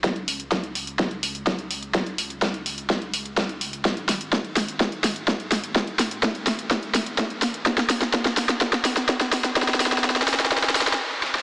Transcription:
<<
  \new Staff \with { instrumentName = "Detuned saw bass" } { \clef bass \time 4/4 \key cis \dorian \tempo 4 = 126 cis,1~ | cis,1 | gis,,1~ | gis,,1 |
dis,1~ | dis,2. r4 | }
  \new DrumStaff \with { instrumentName = "Drums" } \drummode { \time 4/4 <hh bd sn>16 hh16 hho16 hh16 <hh bd sn>16 hh16 hho16 hh16 <hh bd sn>16 hh16 hho16 hh16 <hh bd sn>16 hh16 hho16 hh16 | <hh bd sn>16 hh16 hho16 hh16 <hh bd sn>16 hh16 hho16 hh16 <hh bd sn>16 hh16 hho16 hh16 <hh bd sn>16 hh16 hho16 hh16 | <hh bd sn>16 hh16 <hho sn>16 hh16 <hh bd sn>16 hh16 <hho sn>16 hh16 <hh bd sn>16 hh16 <hho sn>16 hh16 <hh bd sn>16 hh16 <hho sn>16 hh16 | <hh bd sn>16 hh16 <hho sn>16 hh16 <hh bd sn>16 hh16 <hho sn>16 hh16 <hh bd sn>16 hh16 <hho sn>16 hh16 <hh bd sn>16 hh16 <hho sn>16 hh16 |
<hh bd sn>16 <hh sn>16 <hho sn>16 <hh sn>16 <hh bd sn>16 <hh sn>16 <hho sn>16 <hh sn>16 <hh bd sn>16 <hh sn>16 <hho sn>16 <hh sn>16 <hh bd sn>16 <hh sn>16 <hho sn>16 <hh sn>16 | <hh bd sn>32 sn32 <hh sn>32 sn32 <hho sn>32 sn32 <hh sn>32 sn32 <hh bd sn>32 sn32 <hh sn>32 sn32 <hho sn>32 sn32 <hh sn>32 sn32 <hh bd sn>32 sn32 <hh sn>32 sn32 <hho sn>32 sn32 <hh sn>32 sn32 r8 sn16 sn16 | }
>>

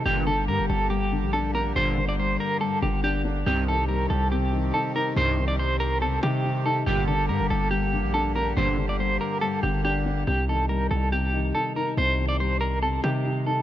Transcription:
<<
  \new Staff \with { instrumentName = "Clean electric guitar" } { \time 4/4 \key c \dorian \tempo 4 = 141 g'8 a'8 bes'8 a'8 g'4 a'8 bes'8 | c''8. d''16 c''8 bes'8 a'8 g'8 g'8 r8 | g'8 a'8 bes'8 a'8 g'4 a'8 bes'8 | c''8. d''16 c''8 bes'8 a'8 g'4 a'8 |
g'8 a'8 bes'8 a'8 g'4 a'8 bes'8 | c''8. d''16 c''8 bes'8 a'8 g'8 g'8 r8 | g'8 a'8 bes'8 a'8 g'4 a'8 bes'8 | c''8. d''16 c''8 bes'8 a'8 g'4 a'8 | }
  \new Staff \with { instrumentName = "Accordion" } { \time 4/4 \key c \dorian g'1~ | g'1~ | g'1~ | g'1 |
g'1~ | g'1 | r1 | r1 | }
  \new Staff \with { instrumentName = "Accordion" } { \clef bass \time 4/4 \key c \dorian <d bes>1~ | <d bes>1 | <ees c'>1~ | <ees c'>1 |
<d bes>1~ | <d bes>1 | r1 | r1 | }
  \new Staff \with { instrumentName = "Grand piano" } { \clef bass \time 4/4 \key c \dorian g,8 d8 g4 g,8 d8 d'8 d'8 | g,8 d8 g4 g,8 d8 d'8 d'8 | c8 ees8 g4 c8 ees8 ees'8 ees'8 | c8 ees8 g4 c8 ees8 ees'8 ees'8 |
g,8 d8 g4 g,8 d8 d'8 d'8 | g,8 d8 g4 g,8 d8 d'8 d'8 | c8 ees8 g4 c8 ees8 ees'8 ees'8 | c8 ees8 g4 c8 ees8 ees'8 ees'8 | }
  \new Staff \with { instrumentName = "Analog polysynth" } { \clef bass \time 4/4 \key c \dorian <g, bes, d>8 r2. r8 | <g, bes, d>8 r2. r8 | <g, c ees>8 r2. r8 | <g, c ees>8 r2. r8 |
<g, bes, d>8 r2. r8 | <g, bes, d>8 r2. r8 | r1 | r1 | }
  \new Staff \with { instrumentName = "808-style bass" } { \clef bass \time 4/4 \key c \dorian g,,4 g,16 g,,16 g,,4~ g,,16 bes,,4~ bes,,16 | g,,4. r4 g,,4. | c,4. c,4. r4 | c,2~ c,8 c4. |
g,,4 g,16 g,,16 g,,4~ g,,16 bes,,4~ bes,,16 | g,,4. r4 g,,4. | c,4. c,4. r4 | c,2~ c,8 c4. | }
>>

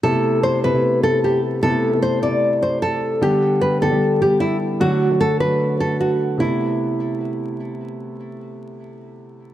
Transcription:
<<
  \new Staff \with { instrumentName = "Nylon-string guitar" } { \time 4/4 \key a \dorian \tempo 4 = 151 a'4 c''8 b'4 a'8 g'8 r8 | a'4 c''8 d''4 c''8 a'4 | g'4 b'8 a'4 g'8 e'8 r8 | fis'4 a'8 b'4 a'8 fis'4 |
e'2. r4 | r1 | }
  \new Staff \with { instrumentName = "Grand piano" } { \time 4/4 \key a \dorian <c a b e'>4. <c a b e'>16 <c a b e'>8. <c a b e'>4. | <c a b e'>8. <c a b e'>8. <c a b e'>4.~ <c a b e'>16 r8. | <d g b g'>4. <d g b g'>16 <d g b g'>8. <d g b g'>4. | <d fis a fis'>8. <d fis a fis'>8. <d fis a fis'>4.~ <d fis a fis'>16 r8. |
<c a b e'>1~ | <c a b e'>1 | }
>>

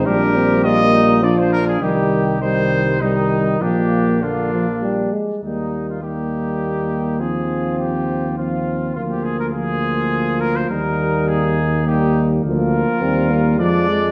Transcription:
<<
  \new Staff \with { instrumentName = "Trumpet" } { \time 3/4 \key ees \major \tempo 4 = 102 bes'4 ees''4 d''16 c''16 bes'16 aes'16 | g'4 c''4 ees'4 | g'4 f'4 r4 | ees'8. f'16 g'2 |
aes'4 g'4 f'4 | f'16 g'16 aes'16 bes'16 aes'4. bes'16 c''16 | bes'4 aes'4 g'8. r16 | bes'2 d''4 | }
  \new Staff \with { instrumentName = "Trumpet" } { \time 3/4 \key ees \major g'4 f'8 ees'8 f'4 | ees'4 ees'4 ees'4 | d'4 d'4. r8 | ees'4 ees'2 |
f'2 f'4 | f'4 f'2 | ees'2 ees'4 | f'2 d'4 | }
  \new Staff \with { instrumentName = "French horn" } { \time 3/4 \key ees \major d'8 c'8 bes4 d'4 | g4 g4 g4 | bes4 bes4. r8 | bes4 bes2 |
c'2 c'4 | bes4 bes2 | bes2 bes4 | bes4 c'8 bes8 aes4 | }
  \new Staff \with { instrumentName = "Euphonium" } { \clef bass \time 3/4 \key ees \major g2 f4 | ees4 ees4 ees4 | f4 d8 f8 g8 aes8 | g4 g2 |
f2 f4 | f4 f2 | g2 g4 | f4 g4 f8 aes8 | }
  \new Staff \with { instrumentName = "Tuba" } { \clef bass \time 3/4 \key ees \major bes,,2. | c,2. | bes,,2~ bes,,8 r8 | ees,2.~ |
ees,2. | d,2. | ees,2. | d,4 ees,4 f,4 | }
>>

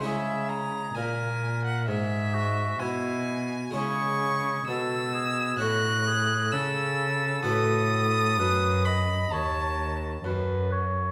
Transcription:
<<
  \new Staff \with { instrumentName = "Violin" } { \time 4/4 \key cis \dorian \tempo 4 = 65 e''8 ais''8 gis''8. fis''16 e''4 gis''4 | \key b \mixolydian cis'''4 e'''4 fis'''4 e'''4 | dis'''4. b''8 a''4 r4 | }
  \new Staff \with { instrumentName = "Oboe" } { \time 4/4 \key cis \dorian gis'4 ais'4 gis'8 fis'8 e'8 r8 | \key b \mixolydian gis'4 a'8 gis'8 fis'8 gis'8 a'4~ | a'4 b'8 dis''8 cis''8 r8 b'8 cis''8 | }
  \new Staff \with { instrumentName = "Harpsichord" } { \time 4/4 \key cis \dorian <gis e' cis''>1 | \key b \mixolydian <gis e' cis''>2 <e' cis''>2 | <fis' b'>1 | }
  \new Staff \with { instrumentName = "Harpsichord" } { \clef bass \time 4/4 \key cis \dorian cis4 ais,4 gis,4 b,4 | \key b \mixolydian cis4 b,4 a,4 cis4 | a,4 fis,4 dis,4 fis,4 | }
  \new Staff \with { instrumentName = "Cello" } { \clef bass \time 4/4 \key cis \dorian cis4 ais,4 gis,4 b,4 | \key b \mixolydian cis4 b,4 a,4 cis4 | a,4 fis,4 dis,4 fis,4 | }
>>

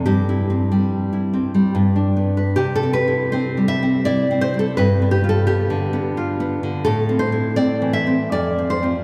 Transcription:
\new Staff \with { instrumentName = "Nylon-string guitar" } { \time 3/4 \key c \major \tempo 4 = 80 << { g'2 r4 | g'16 a'16 b'8 c''8 e''8 d''8 c''16 a'16 | b'8 g'16 a'16 g'4. r8 | a'8 c''8 d''8 e''8 d''8 c''8 | } \\ { g,16 e'16 c'16 g8 e'16 c'16 g16 g,16 d'16 b16 b'16 | \tuplet 3/2 { c8 c'8 e'8 c'8 g8 c'8 e'8 c'8 g8 } | \tuplet 3/2 { g,8 b8 f'8 b8 d8 b8 f'8 b8 d8 } | \tuplet 3/2 { a,8 c'8 e'8 c'8 e8 c'8 f,8 c'8 <c' f'>8 } | } >> }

